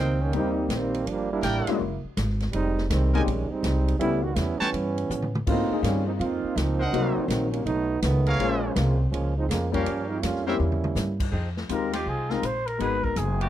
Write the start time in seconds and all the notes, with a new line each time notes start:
Already playing: C#2 D#3 G3 A#3 C4 A#4 C5 D#5 G5
0.21 D#3 G3 A#3 C#4
0.32 D#2 G3 A#3 C4 D#4 G4, ride
0.36 A#3
0.69 A#1, snare, hi-hat pedal, ride
0.73 D#3 G3 A#3 C4
0.94 ride
1.06 G1 F3 G3 A#3 D4, ride
1.33 G3 A#3 D4 E4
1.42 A1 A#4 D5 G5, snare, hi-hat pedal, ride
1.67 G#3 A#3 C#4 E4 F#4, snare, ride
1.79 F#1
2.04 muted upright bass stroke
2.17 G#1, snare, hi-hat pedal, ride
2.30 snare
2.40 snare, ride
2.52 F1 G3 G#3 C4 D#4, ride
2.78 snare
2.90 C2 D#3 G3 G#3 C4, snare, hi-hat pedal, ride
3.14 D#3 G3 G#3 A#3 C4 C#4 D#4 G4 A#4 D#5 G5 G#5, ride
3.26 A#1, ride
3.50 G3 G#3 C4 D#4, muted upright bass stroke
3.63 C2, snare, hi-hat pedal, ride
3.88 ride
3.98 C#2 G3 A3 B3 C#4 E4 G4, ride
4.22 D#3 G3 B3 F#4
4.35 E2 G3 B3 C#4 E4, snare, hi-hat pedal, ride
4.59 E3 G3 B3 C#4 B4 C#5 G5 A5, muted upright bass stroke, snare, ride
4.73 G2, ride
4.98 ride
5.09 A2, hi-hat pedal, high tom
5.22 mid tom
5.35 mid tom
5.47 G#2 A3 A#3 B3 C4 C#4 D#4 E4 F4 F#4, kick, crash
5.70 A#3 C4 D#4 G#4, muted upright bass stroke
5.74 F4
5.83 G2 D#3 G3 A#3 C#4, snare, hi-hat pedal, ride
6.07 F3 A#3 C4 D#4
6.16 F2 A#3 C4 D#4 F4
6.20 D#4, ride
6.44 muted upright bass stroke
6.56 C#2 F3 A#3 C4 D#4, snare, hi-hat pedal, ride
6.80 A#4 C5 D#5 F#5
6.86 D4
6.91 C2 F#3 A#3 C4 D#4 F#4, ride
7.17 muted upright bass stroke
7.27 A#1 D#3 F#3 A#3 C4, snare, hi-hat pedal, ride
7.51 D#3 G3 A#3 C#4, ride
7.65 B1 F#3 A3 B3 D#4, ride
8.01 C#2 D#3 F#3 A3 B3, snare, hi-hat pedal, ride
8.26 G#4 A#4 C#5 F5, ride
8.39 A#1 F3 G#3 A#3 C#4 F4 C5, ride
8.75 C2 C#3 F3 G#3 A#3, snare, hi-hat pedal, ride
9.11 F3 G#3 A#3 C#4, ride
9.37 F3 G#3 C4 D#4
9.49 F2 C#3 F3 G#3 A#3, snare, hi-hat pedal, ride
9.72 F3 G3 A#3 C#4 F4 G4 A#4 C#5 F5, kick, ride
9.86 G2, ride
10.09 F3 G#3 C4 D#4
10.22 F2 G3 A#3 C#4 F4, snare, hi-hat pedal, ride
10.35 snare
10.45 G3 A#3 C4 C#4 E4 G4 A#4 C5 C#5 E5, snare
10.60 E2, mid tom
10.72 mid tom
10.84 mid tom
10.95 G2, snare, hi-hat pedal
11.20 kick, crash
11.31 F2 F3 C4 D#4 G#4
11.57 snare
11.69 D#2 G#3 C4 D#4 F4 G4 A#4, hi-hat pedal, ride
11.92 F3 C4 D#4 F4 G4, snare, ride
12.06 C2 G#4
12.30 G#3 C4 D#4 F4 G#4 A#4, snare
12.42 A#1 C5, hi-hat pedal, ride
12.66 A#4, ride
12.78 G#1 F#3 G#3 B3 D#4 F#4 G#4 A#4 B4, ride
13.04 A#4, kick
13.16 F#1 G#4, hi-hat pedal, ride
13.40 G3 B3 F4 F#4 G4, ride